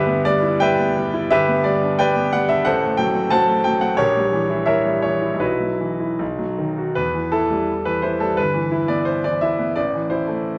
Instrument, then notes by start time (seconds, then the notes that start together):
grand piano
Already playing: G1 G4 B4 E5
0.07 B3
0.25 G3 D5
0.43 E4
0.60 G3 B4 E5 G5
0.79 B3
0.96 G3
1.14 E4
1.31 G1 G4 B4 E5
1.48 B3
1.64 G3 D5
1.83 D4
1.99 G3 B4 D5 G5
2.16 B3
2.33 G3 F#5
2.49 D4 E5
2.65 A1 A4 C5 F#5
2.83 A3
2.97 F#3 G5
3.15 C4
3.30 F#3 C5 F#5 A5
3.48 A3
3.64 F#3 G5
3.81 C4 F#5
3.97 A#1 G4 A#4 C#5
4.17 G3
4.32 E3
4.50 E4
4.66 E3 A#4 C#5 E5
4.85 G3
5.02 E3 C#5
5.22 E4
5.34 B1
5.40 E4 F#4 B4
5.60 F#3
5.81 E3
6.00 E4
6.19 B1
6.39 F#3
6.58 D#3
6.78 F#4
6.95 E2 B4
7.14 E3
7.32 E4 A4
7.50 G3
7.85 E3 B4
8.02 E4 C5
8.20 G3 A4
8.37 G1 B4
8.54 E3
8.71 E4
8.88 B3 D5
9.05 C5
9.24 E3 D5
9.41 E4 E5
9.59 B3
9.76 A1 D5
9.94 E3
10.10 E4 C5
10.27 A3